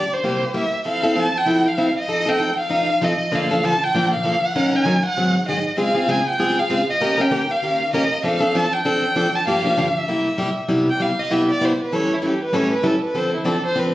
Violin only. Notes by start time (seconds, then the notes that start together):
Already playing: D5
0.14 C5
0.57 E5
0.88 F5
1.19 A5
1.38 G5
1.68 F5
1.99 D#5
2.29 G5
2.60 F5
3.04 D#5
3.35 F5
3.65 A5
3.84 G5
4.13 F5
4.45 F#5
4.76 G#5
5.06 F#5
5.49 D#5
5.80 F5
6.11 G#5
6.29 G5
6.60 F5
6.90 D#5
7.21 G5
7.51 F5
7.94 D#5
8.25 F5
8.56 A5
8.74 G5
9.35 A5
9.48 F5
9.98 E5
10.90 G5
11.02 F5
11.19 D#5
11.33 E5
11.51 D5
11.65 C5
11.83 B4
11.95 C#5
12.14 E4
12.26 G4
12.43 B4
12.55 C#5
12.73 B4
12.86 A4
13.04 B4
13.18 C5
13.36 E4
13.48 A4
13.66 C5
13.79 B4